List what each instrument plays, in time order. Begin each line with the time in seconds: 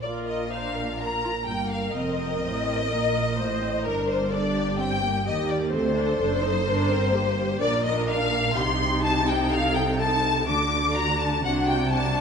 0.03 double bass section A#1, cello section A#2, viola section F4 A#4, violin section D5
0.27 violin section D#5
0.51 viola section D4 C5, violin section F5
0.76 viola section A#4
1.00 viola section D4, violin section A#5
1.24 viola section F4
1.47 double bass section G1, cello section G2, viola section A#3 A#4, violin section G5
1.71 violin section F5
1.94 double bass section F1, cello section F2, viola section C4, violin section D#5
2.42 double bass section A1, cello section A2, viola section C4
2.89 double bass section A#1, cello section A#2, viola section A#3 A#4
3.37 double bass section A1, cello section A2, viola section A#3 C5
3.61 viola section C4
3.85 double bass section G1, cello section G2, viola section D4 A#4, violin section A#4
4.08 violin section C5
4.31 viola section D4 A4, violin section D5
4.55 viola section G4
4.78 viola section C4, violin section G5
5.02 viola section A#3
5.26 cello section D#2, double bass section D#2, viola section A#3 G4, violin section D#5
5.50 violin section D5
5.71 cello section D2, double bass section D2, viola section C4 A4, violin section C5
5.95 viola section D4
6.19 double bass section F#1, cello section F#2, viola section D4
6.42 viola section D#4
6.66 double bass section G1, cello section G2, viola section D4 A#4
6.91 viola section C4
7.13 viola section A#3 G4
7.61 double bass section A#1, cello section A#2, viola section D4 A#4, violin section D5
7.86 violin section D#5
8.10 violin section F5
8.57 double bass section C2, cello section C3, viola section D#4 G4, violin section C6
9.04 violin section A5
9.29 violin section G5
9.52 viola section A4, violin section F5
9.75 violin section G5
9.99 violin section A5
10.48 double bass section D2, cello section D3, viola section D4 F#4, violin section D6
10.96 violin section A#5
11.20 violin section A5
11.44 double bass section C2, cello section C3, viola section D4 F#4, violin section F#5
11.68 violin section G5
11.92 viola section D4 F#4, violin section A5